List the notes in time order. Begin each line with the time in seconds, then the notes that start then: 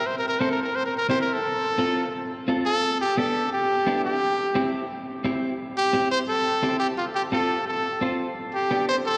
0.07 C5
0.18 A#4
0.28 A#4
0.40 C4 E4 A4 C5
0.52 A#4
0.63 A#4
0.76 C5
0.86 A#4
0.97 A#4
1.09 C4 E4 G4 C5
1.21 A#4
1.33 A4
1.78 C4 F4 A4
2.48 C4 F4 A4
2.66 A4
3.01 G4
3.17 B3 D4 G4 A4
3.53 G4
3.87 B3 D4 E4
4.05 G4
4.55 C4 E4 G4
5.24 C4 E4 G4
5.77 G4
5.93 C4 E4 G4
6.11 C5
6.28 A4
6.63 C4 E4 G4
6.80 G4
6.98 F4
7.15 G4
7.32 C4 F4 A4
7.68 A4
8.01 C4 F4 C5
8.54 G4
8.71 B3 D4 G4
8.89 C5
9.06 A4